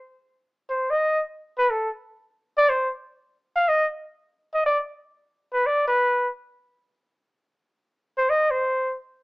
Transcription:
0.70 0.92 C5 medium
0.90 1.24 D#5 loud
1.58 1.72 B4 medium
1.70 1.91 A4 medium
2.58 2.71 D5 loud
2.70 2.90 C5 medium
3.56 3.70 F5 loud
3.68 3.89 D#5 medium
4.54 4.65 D#5 medium
4.66 4.79 D5 medium
5.53 5.68 B4 medium
5.66 5.87 D5 medium
5.87 6.28 B4 medium
8.18 8.31 C5 medium
8.30 8.52 D#5 medium
8.51 8.95 C5 medium

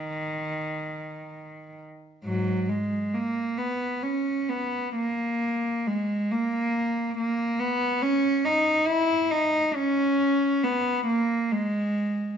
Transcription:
0.00 1.80 D#3 medium
2.24 2.66 G#2 soft
2.24 2.66 F#3 medium
2.69 3.13 G#3 medium
3.14 3.59 A#3 medium
3.58 4.04 B3 medium
4.03 4.50 C#4 medium
4.49 4.96 B3 medium
4.96 5.84 A#3 medium
5.87 6.31 G#3 medium
6.31 7.17 A#3 medium
7.19 7.60 A#3 medium
7.60 8.02 B3 medium
8.02 8.45 C#4 medium
8.45 8.88 D#4 medium
8.87 9.30 E4 medium
9.31 9.75 D#4 medium
9.75 10.62 C#4 medium
10.63 11.07 B3 medium
11.07 11.50 A#3 medium
11.52 12.37 G#3 medium

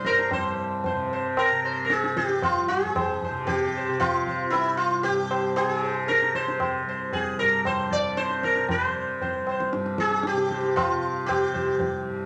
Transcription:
0.00 2.11 C2 medium
0.00 0.92 C3 medium
0.05 0.33 A#4 medium
0.05 0.30 C5 soft
0.05 tabla ke medium
0.09 0.33 G2 medium
0.19 tabla te medium
0.31 2.70 G2 medium
0.31 0.85 C5 medium
0.31 tabla tin medium
0.31 tabla ge medium
0.84 1.10 C5 soft
0.84 tabla tin medium
0.84 tabla ge medium
0.92 1.51 C3 medium
1.13 1.37 C5 soft
1.37 1.83 A#4 medium
1.37 tabla na medium
1.51 3.29 C3 medium
1.65 1.89 C5 soft
1.85 1.91 A#4 medium
1.90 2.17 G#4 medium
1.90 tabla te medium
2.04 tabla te medium
2.11 4.47 C2 medium
2.17 2.43 G4 medium
2.17 tabla ke medium
2.29 tabla te medium
2.42 2.68 F4 medium
2.42 tabla na medium
2.42 tabla ge medium
2.68 5.06 G2 medium
2.68 3.46 G#4 medium
2.68 tabla te medium
2.83 tabla ge soft
2.96 3.21 C5 soft
2.96 tabla na medium
2.96 tabla ge medium
3.22 3.48 C5 soft
3.22 tabla ge medium
3.29 3.89 C3 medium
3.47 3.99 G4 medium
3.47 tabla tin medium
3.47 tabla ge medium
3.77 4.00 C5 soft
3.89 5.64 C3 medium
4.00 4.50 F4 medium
4.00 tabla na medium
4.00 tabla ge medium
4.27 4.52 C5 soft
4.27 tabla ge medium
4.47 6.82 C2 medium
4.47 4.77 E4 medium
4.53 tabla tin medium
4.77 5.03 F4 medium
5.03 7.40 G2 medium
5.03 5.56 G4 medium
5.03 tabla tin medium
5.30 5.55 C5 soft
5.30 tabla na medium
5.56 6.05 G#4 medium
5.56 tabla na medium
5.64 6.22 C3 medium
5.84 6.08 C5 soft
6.08 6.35 A#4 medium
6.08 tabla te medium
6.22 7.98 C3 medium
6.22 tabla te medium
6.35 6.61 C5 medium
6.35 tabla ke medium
6.48 tabla te medium
6.60 6.86 C5 soft
6.60 tabla na medium
6.60 tabla ge medium
6.82 9.15 C2 medium
6.89 7.13 C5 soft
7.13 7.39 G#4 medium
7.13 tabla tin medium
7.13 tabla ge medium
7.39 9.73 G2 medium
7.39 7.66 A#4 medium
7.65 7.93 C5 medium
7.65 tabla na medium
7.65 tabla ge medium
7.91 8.19 D5 medium
7.91 tabla ge soft
7.98 8.57 C3 medium
8.17 8.43 C5 medium
8.17 tabla te medium
8.30 tabla te medium
8.43 8.71 A#4 medium
8.43 tabla ke medium
8.56 10.33 C3 medium
8.56 tabla te medium
8.69 9.21 C5 medium
8.69 tabla tin loud
8.69 tabla ge medium
9.16 11.50 C2 soft
9.22 9.46 C5 soft
9.22 tabla tin medium
9.22 tabla ge medium
9.47 9.73 C5 soft
9.47 tabla na medium
9.60 tabla ke medium
9.73 12.08 G2 medium
9.73 tabla te medium
9.86 tabla te medium
9.98 10.26 G#4 medium
9.98 tabla ke medium
10.11 tabla te medium
10.23 10.76 G4 medium
10.23 tabla te medium
10.33 10.92 C3 medium
10.37 tabla te medium
10.51 10.77 C5 soft
10.51 tabla ke medium
10.63 tabla te medium
10.76 11.26 F4 medium
10.76 tabla na medium
10.76 tabla ge medium
10.92 12.26 C3 medium
11.26 12.01 G4 medium
11.26 tabla na medium
11.26 tabla ge medium
11.50 12.26 C2 medium
11.50 11.78 C5 soft
11.55 tabla ge medium
11.80 tabla tin medium
11.80 tabla ge medium
12.08 12.26 G2 medium

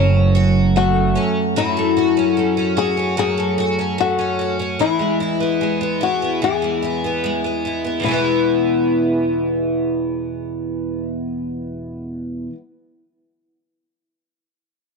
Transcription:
0.00 1.11 F#1 loud
0.00 1.55 F#2 medium
0.00 3.44 F#3 medium
0.00 0.75 A3 medium
0.00 1.12 C#4 medium
0.00 1.15 C#4 medium
0.35 1.57 F#4 medium
0.76 1.76 A3 medium
0.76 1.53 F#4 medium
1.15 2.16 C#4 medium
1.56 3.16 F#2 medium
1.56 2.81 E4 medium
1.56 1.95 F#4 medium
1.77 2.36 A3 medium
1.97 2.76 F#4 medium
2.17 2.56 C#4 medium
2.37 3.36 A3 medium
2.57 2.96 C#4 medium
2.77 3.17 F#4 medium
2.77 3.15 G#4 medium
2.97 3.77 C#4 soft
3.17 4.79 F#2 medium
3.17 3.57 F#4 medium
3.17 4.00 G#4 medium
3.37 3.97 A3 soft
3.58 4.38 F#4 medium
3.79 4.17 C#4 soft
3.98 4.87 A3 medium
3.98 4.76 F#4 medium
4.19 4.58 C#4 medium
4.39 4.79 F#4 medium
4.59 4.88 C#4 soft
4.79 6.41 E2 medium
4.79 5.20 E4 medium
4.79 6.05 E4 medium
4.99 5.60 G#3 soft
5.20 6.00 E4 medium
5.40 5.80 B3 soft
5.61 6.62 G#3 soft
5.81 6.22 B3 medium
6.01 6.42 E4 medium
6.01 6.44 F#4 medium
6.22 7.04 B3 soft
6.42 7.98 E2 medium
6.42 6.82 E4 soft
6.42 7.60 G#4 medium
6.62 7.23 G#3 soft
6.82 7.65 E4 medium
7.04 7.44 B3 soft
7.24 8.08 G#3 medium
7.44 7.84 B3 soft
7.65 8.13 E4 soft
7.85 8.11 B3 soft
8.00 12.46 E2 medium
8.00 12.50 B2 medium
8.04 12.52 E3 medium
8.04 12.47 E4 medium
8.09 12.55 G#3 medium
8.09 12.58 B3 medium
8.14 12.60 E4 medium

